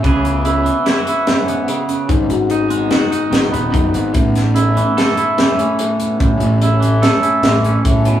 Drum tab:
HH |xxxxxxxxxx|xxxxxxxxxx|xxxxxxxxxx|xxxxxxxxxx|
SD |----o-o---|----o-o---|-o--o-o---|----o-o---|
BD |o---------|o-------o-|o---------|o-------o-|